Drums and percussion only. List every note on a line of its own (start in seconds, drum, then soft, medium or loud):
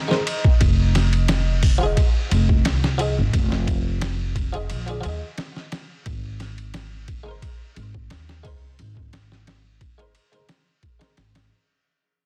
0.11 snare soft
0.27 ride medium
0.44 kick medium
0.61 kick medium
0.61 ride medium
0.95 snare soft
0.95 ride medium
1.13 ride soft
1.28 snare loud
1.28 ride medium
1.63 kick medium
1.63 open hi-hat medium
1.97 kick loud
1.97 ride medium
2.31 ride medium
2.49 kick medium
2.65 snare loud
2.65 ride medium
2.84 snare soft
2.99 ride medium
3.33 kick loud
3.33 ride medium
3.52 snare soft
3.67 kick medium
3.67 ride medium
4.01 snare loud
4.01 ride medium
4.36 kick medium
4.36 ride medium
4.54 ride soft
4.70 ride medium
4.88 ride soft
5.03 ride medium
5.38 snare loud
5.38 ride medium
5.56 snare soft
5.72 snare medium
5.72 ride medium
6.06 kick loud
6.06 ride medium
6.40 snare soft
6.40 ride medium
6.58 ride soft
6.74 snare loud
6.74 ride medium
7.08 kick medium
7.08 ride medium
7.42 kick loud
7.42 ride medium
7.76 ride medium
7.94 kick medium
8.10 snare loud
8.10 ride medium
8.29 snare soft
8.45 kick medium
8.45 ride medium
8.79 ride medium
8.97 kick medium
9.13 snare loud
9.13 ride medium
9.32 snare soft
9.47 snare loud
9.47 ride medium
9.81 kick medium
9.81 ride medium
9.99 ride soft
10.15 ride medium
10.33 ride soft
10.49 snare medium
10.49 ride medium
10.83 kick medium
10.83 ride soft
11.01 snare medium
11.01 ride medium
11.17 snare medium
11.17 ride medium
11.35 snare loud
11.35 ride medium